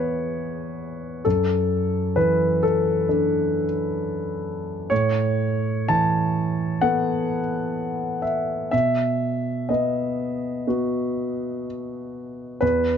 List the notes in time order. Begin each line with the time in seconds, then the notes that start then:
Already playing: E2 E3 B3 B4 C#5 E5
1.25 F#2 A4
2.16 E3 B4
2.63 A4
3.09 D4 A4
4.90 A2 C#5
5.88 E3 A5
6.81 B3 A4 F#5
8.22 E5
8.71 B2 E5
9.69 B3 D#5
10.67 B3 F#4
12.61 E2 B4